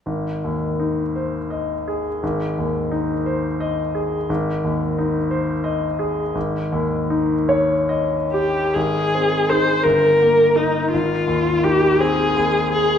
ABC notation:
X:1
M:6/8
L:1/8
Q:3/8=56
K:Ab
V:1 name="Viola"
z6 | z6 | z6 | z4 z G |
A2 c B2 E | F2 G A2 A |]
V:2 name="Grand piano"
A,,, E,, E c e A | A,,, E,, E c e A | A,,, E,, E c e A | A,,, E,, E d e G |
A,,, C [EA] G,,, B, E | A,,, E,, E C E,, A |]